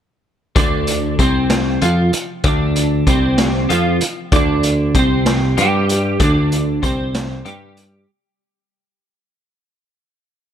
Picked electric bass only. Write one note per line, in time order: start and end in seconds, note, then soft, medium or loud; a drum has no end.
0.56 1.15 D2 medium
1.19 1.78 C2 medium
1.82 2.11 F2 medium
2.14 muted picked electric bass stroke soft
2.44 3.03 D2 loud
3.07 3.66 C2 medium
3.70 3.99 F2 medium
4.03 muted picked electric bass stroke soft
4.32 4.91 D2 loud
4.95 5.54 C2 medium
5.58 6.17 G2 medium
6.20 6.79 D2 medium
6.83 7.42 C2 loud
7.45 8.04 G2 medium